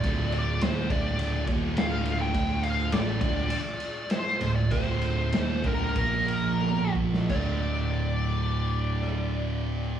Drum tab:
CC |----------------|----------------|----------------|x---------------|
RD |x-x-x-x-x-x-x-x-|x-x-x-x-x-x-x-x-|x-x-x-x-x-x-----|----------------|
SD |----o-------o---|----o-------o---|----o----------o|----------r-----|
T1 |----------------|----------------|------------o---|----------------|
T2 |----------------|----------------|-------------o--|----------------|
BD |o-----o---o-----|o-----o---------|o-----o-o-----o-|o---------------|